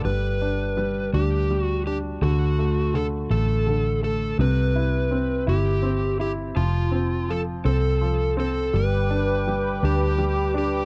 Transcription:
0.04 fingered electric bass G1, grand piano G3, electric slide guitar B4
0.42 grand piano D4
0.77 grand piano G3
1.13 fingered electric bass D2, grand piano D4, electric slide guitar G4
1.50 grand piano G3
1.61 electric slide guitar F#4
1.87 grand piano D4, electric slide guitar G4
2.22 fingered electric bass D2, grand piano D3, electric slide guitar F#4
2.59 grand piano A3
2.94 grand piano D3, electric slide guitar A4
3.30 fingered electric bass A1, grand piano A3, electric slide guitar A4
3.67 grand piano D3
4.02 grand piano A3, electric slide guitar A4
4.39 fingered electric bass C2, grand piano C3, electric slide guitar B4
4.75 grand piano E4
5.11 grand piano C4
5.47 fingered electric bass G1, grand piano E4, electric slide guitar G4
5.83 grand piano C4
6.19 grand piano E4, electric slide guitar G4
6.56 fingered electric bass F1, grand piano F3, electric slide guitar F4
6.92 grand piano C4
7.29 grand piano F3, electric slide guitar A4
7.64 fingered electric bass C2, grand piano C4, electric slide guitar A4
8.01 grand piano F3
8.37 grand piano C4, electric slide guitar A4
8.73 fingered electric bass G1, grand piano G3, analog synth pad B4 G5 D6, electric slide guitar B4
9.10 grand piano D4
9.47 grand piano G3
9.83 fingered electric bass D2, grand piano D4, electric slide guitar G4
10.18 grand piano G3
10.54 grand piano D4, electric slide guitar G4

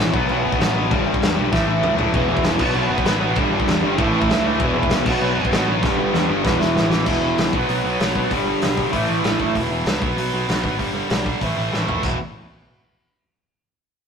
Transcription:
Already playing: picked electric bass A1, overdriven electric guitar E2 B2 E3, distorted electric guitar E2 B2 E3
0.14 picked electric bass B1, distorted electric guitar B2 F#3 B3, kick
0.28 picked electric bass B1, distorted electric guitar B2 F#3 B3, crash
0.44 picked electric bass F#1, distorted electric guitar B2 F#3 B3
0.52 kick
0.60 picked electric bass A1, distorted electric guitar B2 F#3 B3, snare, crash
0.73 distorted electric guitar B2 F#3 B3
0.89 picked electric bass G1, distorted electric guitar G2 D3 G3, kick, crash
1.04 picked electric bass G1, distorted electric guitar G2 D3 G3
1.14 kick
1.20 picked electric bass E2, distorted electric guitar G2 D3 G3, snare, crash
1.34 picked electric bass B1, distorted electric guitar G2 D3 G3
1.51 picked electric bass A1, distorted electric guitar A2 E3 A3, kick, snare
1.66 distorted electric guitar A2 E3 A3
1.81 picked electric bass C#2, distorted electric guitar A2 E3 A3, mid tom
1.97 distorted electric guitar A2 E3 A3, floor tom
2.13 picked electric bass E1, distorted electric guitar E2 B2 E3, kick, crash
2.29 picked electric bass E1, distorted electric guitar E2 B2 E3
2.37 kick
2.44 picked electric bass E1, distorted electric guitar E2 B2 E3, snare, crash
2.59 picked electric bass B1, distorted electric guitar B2 F#3 B3, kick, crash
2.75 picked electric bass B1, distorted electric guitar B2 F#3 B3, crash
2.90 picked electric bass F#1, distorted electric guitar B2 F#3 B3
2.98 kick
3.05 picked electric bass A1, distorted electric guitar B2 F#3 B3, snare, crash
3.20 distorted electric guitar B2 F#3 B3
3.35 picked electric bass G1, distorted electric guitar G2 D3 G3, kick, crash
3.51 picked electric bass G1, distorted electric guitar G2 D3 G3
3.60 kick
3.67 picked electric bass E2, distorted electric guitar G2 D3 G3, snare, crash
3.82 picked electric bass G1, distorted electric guitar G2 D3 G3
3.98 picked electric bass A1, distorted electric guitar A2 E3 A3, kick, crash
4.13 distorted electric guitar A2 E3 A3
4.22 kick
4.29 picked electric bass C#2, distorted electric guitar A2 E3 A3, snare, crash
4.45 distorted electric guitar A2 E3 A3
4.60 picked electric bass E1, distorted electric guitar E2 B2 E3, kick, crash
4.75 picked electric bass E1, distorted electric guitar E2 B2 E3
4.83 kick
4.90 picked electric bass C#2, distorted electric guitar E2 B2 E3, snare, crash
5.06 picked electric bass B1, distorted electric guitar B2 F#3 B3, kick, crash
5.21 picked electric bass B1, distorted electric guitar B2 F#3 B3, crash
5.37 picked electric bass F#1, distorted electric guitar B2 F#3 B3
5.45 kick
5.52 picked electric bass A1, distorted electric guitar B2 F#3 B3, snare, crash
5.68 distorted electric guitar B2 F#3 B3
5.83 picked electric bass G1, distorted electric guitar G2 D3 G3, kick, snare
5.98 picked electric bass G1, distorted electric guitar G2 D3 G3
6.12 picked electric bass E2, distorted electric guitar G2 D3 G3, snare
6.29 picked electric bass G1, distorted electric guitar G2 D3 G3
6.43 picked electric bass E1, distorted electric guitar E2 B2 E3, kick, snare
6.58 distorted electric guitar E2 B2 E3, snare
6.76 picked electric bass A1, distorted electric guitar E2 B2 E3, snare
6.89 distorted electric guitar E2 B2 E3, snare
7.05 picked electric bass E1, distorted electric guitar E2 B2 E3, kick, crash
7.20 picked electric bass E1, distorted electric guitar E2 B2 E3
7.37 picked electric bass C#2, distorted electric guitar E2 B2 E3, snare, open hi-hat
7.53 picked electric bass B1, distorted electric guitar B2 F#3 B3, kick
7.68 picked electric bass B1, distorted electric guitar B2 F#3 B3, open hi-hat
7.84 picked electric bass B1, distorted electric guitar B2 F#3 B3
8.00 picked electric bass B1, distorted electric guitar B2 F#3 B3, snare, open hi-hat
8.15 picked electric bass B1, distorted electric guitar B2 F#3 B3, kick
8.31 picked electric bass G1, distorted electric guitar G2 D3 G3, kick, open hi-hat
8.47 distorted electric guitar G2 D3 G3
8.61 picked electric bass B1, distorted electric guitar G2 D3 G3, snare, open hi-hat
8.77 distorted electric guitar G2 D3 G3, kick
8.91 picked electric bass A1, distorted electric guitar A2 E3 A3, kick, open hi-hat
9.07 picked electric bass A1, distorted electric guitar A2 E3 A3
9.22 picked electric bass A1, distorted electric guitar A2 E3 A3, snare, open hi-hat
9.38 picked electric bass F#1, distorted electric guitar A2 E3 A3, kick
9.54 picked electric bass E1, distorted electric guitar E2 B2 E3, kick, open hi-hat
9.70 picked electric bass E1, distorted electric guitar E2 B2 E3
9.85 picked electric bass C#2, distorted electric guitar E2 B2 E3, snare, open hi-hat
10.02 picked electric bass B1, distorted electric guitar B2 F#3 B3, kick
10.17 picked electric bass B1, distorted electric guitar B2 F#3 B3, open hi-hat
10.33 picked electric bass B1, distorted electric guitar B2 F#3 B3
10.49 picked electric bass B1, distorted electric guitar B2 F#3 B3, snare, open hi-hat
10.63 picked electric bass G#1, distorted electric guitar B2 F#3 B3, kick
10.78 picked electric bass G1, distorted electric guitar G2 D3 G3, kick, open hi-hat
10.95 distorted electric guitar G2 D3 G3
11.10 picked electric bass B1, distorted electric guitar G2 D3 G3, snare, open hi-hat
11.25 distorted electric guitar G2 D3 G3, kick
11.40 picked electric bass A1, distorted electric guitar A2 E3 A3, kick, open hi-hat
11.56 picked electric bass A1, distorted electric guitar A2 E3 A3
11.72 picked electric bass A1, distorted electric guitar A2 E3 A3, snare
11.88 picked electric bass F#1, distorted electric guitar A2 E3 A3, floor tom
12.03 picked electric bass E1, distorted electric guitar E2 B2 E3, kick, splash

